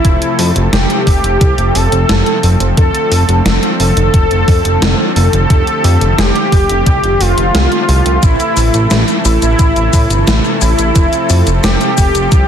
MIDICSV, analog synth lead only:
0, 0, Header, 1, 2, 480
1, 0, Start_track
1, 0, Key_signature, -1, "minor"
1, 0, Tempo, 681818
1, 33, Time_signature, 4, 2, 24, 8
1, 8785, End_track
2, 0, Start_track
2, 0, Title_t, "Analog synth lead"
2, 0, Program_c, 0, 81
2, 0, Note_on_c, 0, 64, 109
2, 417, Note_off_c, 0, 64, 0
2, 513, Note_on_c, 0, 67, 106
2, 1234, Note_on_c, 0, 69, 101
2, 1245, Note_off_c, 0, 67, 0
2, 1858, Note_off_c, 0, 69, 0
2, 1953, Note_on_c, 0, 69, 102
2, 2577, Note_off_c, 0, 69, 0
2, 2674, Note_on_c, 0, 69, 112
2, 3537, Note_off_c, 0, 69, 0
2, 3633, Note_on_c, 0, 69, 107
2, 4353, Note_on_c, 0, 67, 112
2, 4363, Note_off_c, 0, 69, 0
2, 5072, Note_on_c, 0, 65, 105
2, 5083, Note_off_c, 0, 67, 0
2, 5793, Note_on_c, 0, 64, 102
2, 5804, Note_off_c, 0, 65, 0
2, 6417, Note_off_c, 0, 64, 0
2, 6513, Note_on_c, 0, 64, 110
2, 7377, Note_off_c, 0, 64, 0
2, 7473, Note_on_c, 0, 64, 109
2, 8097, Note_off_c, 0, 64, 0
2, 8193, Note_on_c, 0, 67, 105
2, 8785, Note_off_c, 0, 67, 0
2, 8785, End_track
0, 0, End_of_file